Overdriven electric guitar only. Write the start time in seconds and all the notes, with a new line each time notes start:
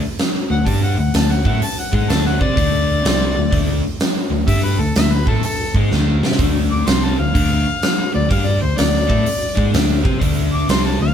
0.49 D3 A3
0.65 G3 D4 G4
0.97 D3 A3
1.14 D3 A3
1.45 A3 E4 A4
1.61 muted overdriven electric guitar stroke
1.92 G#3 D#4 G#4
2.09 D3 A3 D4
2.39 C4 G4 C5
2.55 D3 A3 D4
3.03 C3 G3 C4
3.36 D3 A3
3.51 D3 A3 D4
4.30 D3 A3
4.47 G3 D4 G4
4.80 D3 A3
4.97 D3 A3
5.27 A3 E4 A4
5.44 muted overdriven electric guitar stroke
5.76 G#3 D#4 G#4
5.93 D3 A3 D4
6.23 C4 G4 C5
6.39 D3 A3 D4
6.87 C3 G3 C4
7.18 D3 A3
7.34 D3 A3 D4
8.13 D3 A3
8.29 G3 D4 G4
8.61 D3 A3
8.76 D3 A3
9.07 A3 E4 A4
9.24 muted overdriven electric guitar stroke
9.55 G#3 D#4 G#4
9.71 D3 A3 D4
10.03 C4 G4 C5
10.19 D3 A3 D4
10.69 C3 G3 C4
10.99 D3 A3